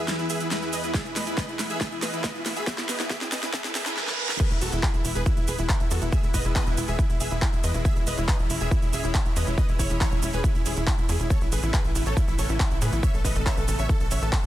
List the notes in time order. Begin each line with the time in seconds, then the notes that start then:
Already playing: E2 E3 B3 G#4 B4, riser
0.08 E4, snare, closed hi-hat, shaker
0.19 E4, shaker
0.30 G#4 E5, open hi-hat, shaker
0.40 E4, closed hi-hat, shaker
0.51 E4, snare, closed hi-hat, shaker
0.62 E4, shaker
0.73 B4 D#5, open hi-hat, shaker
0.84 E4, closed hi-hat, shaker
0.94 G#4, kick, snare, closed hi-hat, shaker
1.05 E4, shaker
1.16 B4 D#5, snare, open hi-hat, shaker
1.27 E4, closed hi-hat, shaker
1.37 B4 D#5, kick, snare, closed hi-hat, shaker
1.48 E4, shaker
1.59 E4, snare, open hi-hat, shaker
1.70 G#4 E5, closed hi-hat, shaker
1.81 G#4 E5, kick, snare, closed hi-hat, shaker
1.91 E4, shaker
2.02 B4 D#5, snare, open hi-hat, shaker
2.13 E4, closed hi-hat, shaker
2.24 B4 D#5, kick, snare, closed hi-hat, shaker
2.35 E4, shaker
2.46 E4, snare, open hi-hat, shaker
2.56 G#4 E5, closed hi-hat, shaker
2.67 G#4 E5, kick, snare, closed hi-hat, shaker
2.78 E4, snare, shaker
2.89 B4 D#5, snare, open hi-hat, shaker
3.00 E4, snare, closed hi-hat, shaker
3.10 G#4 E5, kick, snare, closed hi-hat, shaker
3.21 E4, snare, shaker
3.32 B4 D#5, snare, open hi-hat, shaker
3.43 E4, snare, closed hi-hat, shaker
3.53 G#4 E5, kick, snare, closed hi-hat, reverse cymbal, shaker
3.64 E4, snare, shaker
3.75 G#4 E5, snare, open hi-hat, shaker
3.86 E4, snare, closed hi-hat, shaker
3.97 snare
4.07 snare
4.29 snare
4.40 E3 G#3 B3 G#4 B4, kick, closed hi-hat, crash, shaker
4.51 E1 E4, closed hi-hat, shaker
4.61 E1 F#4 A4, open hi-hat, shaker
4.72 E1 E4, closed hi-hat, shaker
4.83 E4 G#4, kick, clap, closed hi-hat, shaker
4.94 E1 E4, closed hi-hat, shaker
5.04 E1 E4, open hi-hat, shaker
5.15 E1 G#4 B4, closed hi-hat, shaker
5.26 E4, kick, closed hi-hat, shaker
5.37 E1 E4, closed hi-hat, shaker
5.48 E1 G#4 B4, open hi-hat, shaker
5.58 E1 E4, closed hi-hat, shaker
5.69 E4, kick, clap, closed hi-hat, shaker
5.80 E1 E4, closed hi-hat, shaker
5.91 E2 F#4 A4, open hi-hat, shaker
6.02 E1 E4, closed hi-hat, shaker
6.12 G#4 E5, kick, closed hi-hat, shaker
6.23 E1 E4, closed hi-hat, shaker
6.34 E1 B4 D#5, kick, open hi-hat, shaker
6.45 E1 E4, closed hi-hat, shaker
6.56 B4 D#5, kick, clap, closed hi-hat, shaker
6.66 E1 E4, closed hi-hat, shaker
6.77 E1 E4, open hi-hat, shaker
6.88 E1 G#4 E5, closed hi-hat, shaker
6.99 E4, kick, closed hi-hat, shaker
7.09 E1 E4, closed hi-hat, shaker
7.20 E1 G#4 E5, open hi-hat, shaker
7.31 E1 E4, closed hi-hat, shaker
7.42 E4, kick, clap, closed hi-hat, shaker
7.53 E1 E4, closed hi-hat, shaker
7.63 E2 B4 D#5, open hi-hat, shaker
7.74 E1 E4, closed hi-hat, shaker
7.85 C#4 G#4 E5, kick, closed hi-hat, shaker
7.96 E1 E4, closed hi-hat, shaker
8.07 E1 B4 D#5, open hi-hat, shaker
8.18 E1 E4, closed hi-hat, shaker
8.28 B4 D#5, kick, clap, closed hi-hat, shaker
8.39 E1 E4, closed hi-hat, shaker
8.50 E1 E4, open hi-hat, shaker
8.61 E1 G#4 E5, closed hi-hat, shaker
8.71 E4, kick, closed hi-hat, shaker
8.82 E1 E4, closed hi-hat, shaker
8.93 E1 G#4 E5, open hi-hat, shaker
9.04 E1 E4, closed hi-hat, shaker
9.15 E4, kick, clap, closed hi-hat, shaker
9.25 E1 E4, closed hi-hat, shaker
9.36 E2 B4 D#5, open hi-hat, shaker
9.47 E1 E4, closed hi-hat, shaker
9.58 B4 D#5, kick, closed hi-hat, shaker
9.69 E1 E4, closed hi-hat, shaker
9.79 E1 E4 C#5, kick, open hi-hat, shaker
9.90 E1 E4, closed hi-hat, shaker
10.01 E4 C#5, kick, clap, closed hi-hat, shaker
10.12 E1 E4, closed hi-hat, shaker
10.23 E1 E4, open hi-hat, shaker
10.33 E1 G#4 B4, closed hi-hat, shaker
10.44 E4, kick, closed hi-hat, shaker
10.55 E1 E4, closed hi-hat, shaker
10.66 E1 E4 G#4, open hi-hat, shaker
10.77 E1 E4, closed hi-hat, shaker
10.87 E4, kick, clap, closed hi-hat, shaker
10.98 E1 E4, closed hi-hat, shaker
11.09 E2 E4 G#4, open hi-hat, shaker
11.20 E1 E4, closed hi-hat, shaker
11.30 C#3 A3 B3 A4 C#5, kick, closed hi-hat, shaker
11.41 A1 E4, closed hi-hat, shaker
11.52 A1 G#4 B4, open hi-hat, shaker
11.63 A1 E4, closed hi-hat, shaker
11.74 G#4 B4, kick, clap, closed hi-hat, shaker
11.84 A1 E4, closed hi-hat, shaker
11.95 A1 E4, open hi-hat, shaker
12.06 A1 A4 C#5, closed hi-hat, shaker
12.17 E4, kick, closed hi-hat, shaker
12.28 A1 E4, closed hi-hat, shaker
12.38 A1 A4 C#5, open hi-hat, shaker
12.49 A1 E4, closed hi-hat, shaker
12.60 E4, kick, clap, closed hi-hat, shaker
12.71 A1 E4, closed hi-hat, shaker
12.82 A2 G#4 B4, open hi-hat, shaker
12.92 A1 E4, closed hi-hat, shaker
13.03 C#5 E5, kick, closed hi-hat, shaker
13.14 A1 A4, closed hi-hat, shaker
13.25 A1 B4 D#5, kick, open hi-hat, shaker
13.36 A1 A4, closed hi-hat, shaker
13.46 C#5 E5, kick, clap, closed hi-hat, shaker
13.57 A1 A4, closed hi-hat, shaker
13.68 A1 A4, open hi-hat, shaker
13.79 A1 C#5 E5, closed hi-hat, shaker
13.89 A4, kick, closed hi-hat, shaker
14.00 A1 A4, closed hi-hat, shaker
14.11 A1 C#5 E5, open hi-hat, shaker
14.22 A1 A4, closed hi-hat, shaker
14.32 kick, clap, closed hi-hat, shaker